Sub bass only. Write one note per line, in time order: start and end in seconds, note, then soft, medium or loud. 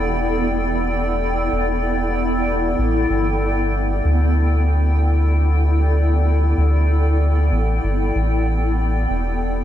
0.00 1.49 E1 medium
1.52 2.75 E1 medium
2.78 3.06 A1 loud
3.10 4.01 G1 loud
4.05 6.54 D2 medium
6.57 7.51 D2 medium
7.52 7.80 A1 loud
7.83 8.11 G1 medium
8.15 9.07 A1 loud
9.10 9.64 E1 medium